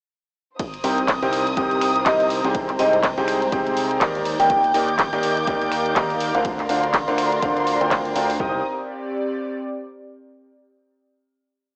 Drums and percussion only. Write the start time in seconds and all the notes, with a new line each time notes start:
0.60 kick, closed hi-hat, ride
0.74 closed hi-hat
0.84 open hi-hat
0.98 closed hi-hat
1.08 kick, clap, closed hi-hat, ride
1.23 closed hi-hat
1.33 open hi-hat
1.47 closed hi-hat
1.57 kick, closed hi-hat, ride
1.71 closed hi-hat
1.82 finger snap, open hi-hat
1.96 closed hi-hat
2.06 kick, clap, closed hi-hat, ride
2.20 closed hi-hat
2.30 open hi-hat
2.44 closed hi-hat
2.55 kick, closed hi-hat, ride
2.69 clap, closed hi-hat
2.79 open hi-hat
2.93 closed hi-hat
3.03 kick, clap, closed hi-hat, ride
3.18 closed hi-hat
3.28 finger snap, open hi-hat
3.42 closed hi-hat
3.52 kick, closed hi-hat, ride
3.66 closed hi-hat
3.77 open hi-hat
3.91 closed hi-hat
4.01 kick, clap, closed hi-hat, ride
4.15 closed hi-hat
4.25 open hi-hat
4.40 open hi-hat
4.50 kick, closed hi-hat, ride
4.64 closed hi-hat
4.74 open hi-hat
4.88 closed hi-hat
4.99 kick, clap, closed hi-hat, ride
5.13 closed hi-hat
5.23 open hi-hat
5.37 closed hi-hat
5.47 kick, closed hi-hat, ride
5.62 closed hi-hat
5.72 finger snap, open hi-hat
5.86 closed hi-hat
5.96 kick, clap, closed hi-hat, ride
6.10 closed hi-hat
6.20 open hi-hat
6.35 closed hi-hat
6.45 kick, closed hi-hat, ride
6.59 clap, closed hi-hat
6.69 open hi-hat
6.84 closed hi-hat
6.94 kick, clap, closed hi-hat, ride
7.08 closed hi-hat
7.18 finger snap, open hi-hat
7.32 closed hi-hat
7.42 kick, closed hi-hat, ride
7.57 closed hi-hat
7.67 open hi-hat
7.81 closed hi-hat
7.91 kick, clap, closed hi-hat, ride
8.05 closed hi-hat
8.16 open hi-hat
8.30 open hi-hat
8.40 kick, floor tom